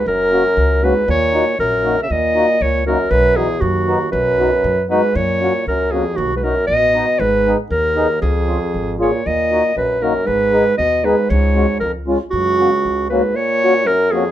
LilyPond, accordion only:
\new Staff \with { instrumentName = "Accordion" } { \time 2/4 \key b \major \tempo 4 = 117 r8 <ais cis' fis'>8 r8 <ais cis' fis'>8 | r8 <ais dis' fis'>8 r8 <ais dis' fis'>8 | r8 <ais dis' fis'>8 r8 <ais dis' fis'>8 | r8 <b dis' fis'>8 r8 <b dis' fis'>8 |
r8 <b dis' fis'>8 r8 <b dis' fis'>8 | \key fis \major r8 <ais cis' fis'>8 r8 <ais cis' fis'>8 | r8 <b dis' fis'>8 r8 <b dis' fis'>8 | r8 <b dis' gis'>8 r8 <b dis' gis'>8 |
r8 <cis' eis' gis'>8 r8 <cis' eis' gis'>8 | r8 <ais dis' fis'>8 r8 <ais dis' fis'>8 | r8 <b dis' gis'>8 r8 <b dis' gis'>8 | r8 <gis cis' fis'>8 r8 <gis cis' eis'>8 |
r8 <ais cis' fis'>8 r8 <ais cis' fis'>8 | r8 <ais cis' fis'>8 r8 <ais cis' fis'>8 | }